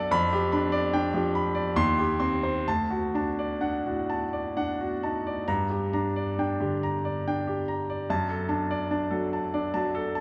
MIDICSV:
0, 0, Header, 1, 2, 480
1, 0, Start_track
1, 0, Tempo, 821918
1, 63, Time_signature, 3, 2, 24, 8
1, 1023, Tempo, 903614
1, 1503, Tempo, 953895
1, 2463, Tempo, 895522
1, 3903, Tempo, 827586
1, 5617, End_track
2, 0, Start_track
2, 0, Title_t, "Grand piano"
2, 0, Program_c, 0, 0
2, 0, Control_c, 0, 64, 127
2, 0, Note_on_c, 0, 54, 73
2, 0, Note_on_c, 0, 62, 61
2, 0, Note_on_c, 0, 69, 68
2, 0, Note_on_c, 0, 74, 66
2, 0, Note_on_c, 0, 81, 73
2, 64, Note_off_c, 0, 74, 0
2, 66, Note_on_c, 0, 41, 73
2, 67, Note_on_c, 0, 83, 95
2, 73, Control_c, 0, 64, 0
2, 76, Note_off_c, 0, 62, 0
2, 76, Note_off_c, 0, 81, 0
2, 79, Note_off_c, 0, 54, 0
2, 79, Note_off_c, 0, 69, 0
2, 162, Control_c, 0, 64, 127
2, 192, Note_on_c, 0, 67, 69
2, 255, Note_off_c, 0, 83, 0
2, 305, Note_on_c, 0, 83, 63
2, 310, Note_on_c, 0, 62, 64
2, 375, Note_off_c, 0, 67, 0
2, 421, Note_on_c, 0, 74, 71
2, 491, Note_off_c, 0, 83, 0
2, 493, Note_off_c, 0, 62, 0
2, 546, Note_on_c, 0, 79, 66
2, 549, Note_on_c, 0, 62, 56
2, 609, Note_off_c, 0, 74, 0
2, 665, Note_on_c, 0, 67, 57
2, 666, Note_on_c, 0, 53, 50
2, 733, Note_off_c, 0, 79, 0
2, 734, Note_off_c, 0, 62, 0
2, 789, Note_on_c, 0, 83, 68
2, 854, Note_off_c, 0, 53, 0
2, 854, Note_off_c, 0, 67, 0
2, 904, Note_on_c, 0, 74, 60
2, 979, Note_off_c, 0, 83, 0
2, 1001, Note_off_c, 0, 41, 0
2, 1025, Note_off_c, 0, 74, 0
2, 1028, Note_on_c, 0, 39, 78
2, 1030, Note_on_c, 0, 84, 91
2, 1033, Control_c, 0, 64, 0
2, 1134, Control_c, 0, 64, 127
2, 1146, Note_on_c, 0, 67, 54
2, 1213, Note_off_c, 0, 84, 0
2, 1259, Note_on_c, 0, 84, 62
2, 1261, Note_on_c, 0, 60, 54
2, 1333, Note_off_c, 0, 67, 0
2, 1385, Note_on_c, 0, 72, 60
2, 1454, Note_off_c, 0, 84, 0
2, 1455, Note_off_c, 0, 60, 0
2, 1491, Note_off_c, 0, 39, 0
2, 1506, Note_off_c, 0, 72, 0
2, 1514, Control_c, 0, 64, 0
2, 1514, Note_on_c, 0, 38, 59
2, 1514, Note_on_c, 0, 81, 74
2, 1590, Control_c, 0, 64, 127
2, 1628, Note_on_c, 0, 66, 56
2, 1700, Note_off_c, 0, 81, 0
2, 1749, Note_on_c, 0, 62, 52
2, 1753, Note_on_c, 0, 81, 56
2, 1819, Note_off_c, 0, 66, 0
2, 1872, Note_on_c, 0, 74, 53
2, 1940, Note_off_c, 0, 62, 0
2, 1943, Note_off_c, 0, 81, 0
2, 1983, Note_on_c, 0, 62, 49
2, 1984, Note_on_c, 0, 78, 56
2, 2063, Note_off_c, 0, 74, 0
2, 2108, Note_on_c, 0, 45, 43
2, 2109, Note_on_c, 0, 66, 48
2, 2178, Note_off_c, 0, 62, 0
2, 2178, Note_off_c, 0, 78, 0
2, 2228, Note_on_c, 0, 81, 52
2, 2299, Note_off_c, 0, 45, 0
2, 2299, Note_off_c, 0, 66, 0
2, 2345, Note_on_c, 0, 74, 46
2, 2417, Note_off_c, 0, 81, 0
2, 2465, Note_on_c, 0, 62, 49
2, 2465, Note_on_c, 0, 78, 59
2, 2537, Note_off_c, 0, 74, 0
2, 2592, Note_on_c, 0, 66, 52
2, 2662, Note_off_c, 0, 62, 0
2, 2662, Note_off_c, 0, 78, 0
2, 2714, Note_on_c, 0, 63, 43
2, 2715, Note_on_c, 0, 81, 50
2, 2786, Note_off_c, 0, 66, 0
2, 2834, Note_off_c, 0, 63, 0
2, 2840, Note_on_c, 0, 74, 53
2, 2907, Note_off_c, 0, 81, 0
2, 2937, Note_off_c, 0, 38, 0
2, 2953, Note_on_c, 0, 82, 71
2, 2955, Note_on_c, 0, 43, 62
2, 2956, Note_off_c, 0, 74, 0
2, 2961, Control_c, 0, 64, 0
2, 3046, Control_c, 0, 64, 127
2, 3071, Note_on_c, 0, 67, 49
2, 3145, Note_off_c, 0, 82, 0
2, 3197, Note_on_c, 0, 82, 55
2, 3198, Note_on_c, 0, 62, 53
2, 3265, Note_off_c, 0, 67, 0
2, 3320, Note_on_c, 0, 74, 54
2, 3388, Note_off_c, 0, 62, 0
2, 3388, Note_off_c, 0, 82, 0
2, 3439, Note_on_c, 0, 62, 50
2, 3443, Note_on_c, 0, 79, 50
2, 3508, Note_off_c, 0, 74, 0
2, 3556, Note_on_c, 0, 50, 44
2, 3556, Note_on_c, 0, 67, 46
2, 3626, Note_off_c, 0, 62, 0
2, 3628, Note_off_c, 0, 79, 0
2, 3679, Note_on_c, 0, 82, 56
2, 3743, Note_off_c, 0, 50, 0
2, 3743, Note_off_c, 0, 67, 0
2, 3795, Note_on_c, 0, 74, 47
2, 3862, Note_off_c, 0, 82, 0
2, 3917, Note_on_c, 0, 62, 47
2, 3918, Note_on_c, 0, 79, 54
2, 3982, Note_off_c, 0, 74, 0
2, 4033, Note_on_c, 0, 67, 47
2, 4108, Note_off_c, 0, 62, 0
2, 4109, Note_off_c, 0, 79, 0
2, 4153, Note_on_c, 0, 82, 50
2, 4226, Note_off_c, 0, 67, 0
2, 4279, Note_on_c, 0, 74, 51
2, 4346, Note_off_c, 0, 82, 0
2, 4370, Note_off_c, 0, 43, 0
2, 4395, Note_on_c, 0, 42, 60
2, 4396, Note_off_c, 0, 74, 0
2, 4397, Note_on_c, 0, 81, 73
2, 4402, Control_c, 0, 64, 0
2, 4480, Control_c, 0, 64, 127
2, 4508, Note_on_c, 0, 69, 50
2, 4585, Note_off_c, 0, 81, 0
2, 4621, Note_on_c, 0, 62, 52
2, 4622, Note_on_c, 0, 81, 56
2, 4699, Note_off_c, 0, 69, 0
2, 4748, Note_on_c, 0, 74, 58
2, 4814, Note_off_c, 0, 62, 0
2, 4815, Note_off_c, 0, 81, 0
2, 4864, Note_on_c, 0, 62, 51
2, 4866, Note_on_c, 0, 81, 54
2, 4937, Note_off_c, 0, 74, 0
2, 4980, Note_on_c, 0, 69, 49
2, 4982, Note_on_c, 0, 54, 49
2, 5055, Note_off_c, 0, 62, 0
2, 5055, Note_off_c, 0, 81, 0
2, 5110, Note_on_c, 0, 81, 51
2, 5173, Note_off_c, 0, 69, 0
2, 5174, Note_off_c, 0, 54, 0
2, 5230, Note_on_c, 0, 74, 54
2, 5231, Note_on_c, 0, 62, 49
2, 5298, Note_off_c, 0, 81, 0
2, 5347, Note_on_c, 0, 54, 59
2, 5347, Note_on_c, 0, 81, 62
2, 5419, Note_off_c, 0, 74, 0
2, 5420, Note_off_c, 0, 62, 0
2, 5468, Note_on_c, 0, 69, 60
2, 5537, Note_off_c, 0, 81, 0
2, 5538, Note_off_c, 0, 54, 0
2, 5587, Note_on_c, 0, 81, 62
2, 5617, Note_off_c, 0, 42, 0
2, 5617, Note_off_c, 0, 69, 0
2, 5617, Note_off_c, 0, 81, 0
2, 5617, End_track
0, 0, End_of_file